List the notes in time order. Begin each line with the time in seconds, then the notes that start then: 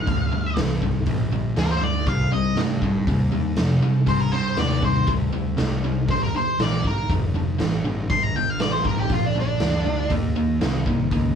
Already playing: F5
0.07 D2 G2 D3, kick, open hi-hat
0.32 G2 D3
0.56 C2 G2 E3, snare, open hi-hat
0.82 G2 D3, kick
1.06 A#1 G2 D3, kick, open hi-hat
1.32 G2 D3
1.54 D2 G2 E3, snare, open hi-hat
1.59 A#4
1.71 C5
1.81 G2 D3 D5
2.06 C2 C3 G3 F5, kick, open hi-hat
2.32 C3 G3 D#5
2.55 G2 C3 A3, snare, open hi-hat
2.82 C3 G3, kick
3.07 D#2 C3 G3, kick, open hi-hat
3.32 C3 G3
3.56 F2 C3 A3, snare, open hi-hat
3.82 C3 G3, muted picked electric bass stroke
4.07 G2 C3 G3 C5, kick, open hi-hat
4.20 A#4
4.32 C3 G3 C5
4.57 D#2 C3 A3 D5, snare, open hi-hat
4.82 C3 G3 C5, kick
5.07 D2 C3 G3, kick, open hi-hat
5.33 C3 G3
5.57 C2 C3 A3, snare, open hi-hat
5.84 C3 G3
6.08 G1 G2 D3 C5, kick, open hi-hat
6.23 A#4
6.33 G2 D3 C5, muted picked electric bass stroke
6.59 A#1 G2 E3 D5, snare, open hi-hat
6.84 G2 D3 A#4, muted picked electric bass stroke, kick
7.09 F1 G2 D3, kick, open hi-hat
7.34 G2 D3
7.58 A1 G2 E3, snare, open hi-hat
7.85 G2 D3
8.10 G1 G2 D3 C6, kick, open hi-hat
8.23 A#5
8.36 G2 D3 G5
8.50 F5
8.59 A1 G2 E3 D5, snare, open hi-hat
8.72 C5
8.84 G2 D3 A#4, kick
8.99 G4
9.09 A#1 G2 D3 F4, kick, open hi-hat
9.26 D4
9.35 G2 D3
9.40 D4
9.60 D2 G2 E3, snare, open hi-hat
9.85 G2 D3
10.10 D#2 D#3 A#3, kick, open hi-hat
10.36 D#3 A#3
10.60 C2 D#3 C4, snare, open hi-hat
10.86 D#3 A#3, kick
11.11 C#2 D#3 A#3, kick, open hi-hat